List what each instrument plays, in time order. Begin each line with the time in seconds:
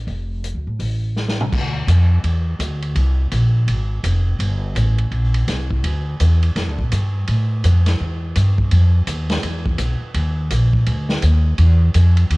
0.07 upright bass F1, open hi-hat
0.44 closed hi-hat
0.55 upright bass D2
0.67 upright bass A2
0.80 upright bass A1, open hi-hat
1.17 snare
1.29 snare
1.41 mid tom
1.52 upright bass D2, kick, crash
1.87 upright bass F2, hi-hat pedal, ride
2.24 upright bass E2, ride
2.59 upright bass D2, hi-hat pedal, ride
2.82 ride
2.95 upright bass C2, ride
3.31 upright bass A#1, hi-hat pedal, ride
3.68 upright bass G#1, ride
4.03 upright bass F1, hi-hat pedal, ride
4.39 upright bass G1, ride
4.75 upright bass A1, hi-hat pedal, ride
4.98 ride
5.11 upright bass A#1, ride
5.34 ride
5.48 upright bass C2, snare, hi-hat pedal, ride
5.70 kick
5.84 upright bass D2, ride
6.20 upright bass E2, hi-hat pedal, ride
6.42 ride
6.55 upright bass F2, snare, ride
6.68 upright bass D2
6.78 upright bass A#1, kick
6.91 upright bass G2, hi-hat pedal, ride
7.27 upright bass A2, ride
7.64 upright bass F2, hi-hat pedal, ride
7.86 snare, ride
8.00 upright bass E2
8.35 upright bass G2, hi-hat pedal, ride
8.58 kick
8.71 upright bass F2, ride
9.07 upright bass D#2, hi-hat pedal, ride
9.29 snare, ride
9.43 upright bass E2, ride
9.66 kick
9.78 upright bass B1, hi-hat pedal, ride
10.01 muted upright bass stroke
10.14 upright bass D#2, ride
10.51 upright bass A#1, hi-hat pedal, ride
10.73 kick
10.86 upright bass D2, ride
11.09 snare
11.22 upright bass D#2, hi-hat pedal, ride
11.58 upright bass E2, ride
11.94 upright bass F2, hi-hat pedal, ride
12.17 ride
12.30 upright bass D#2, ride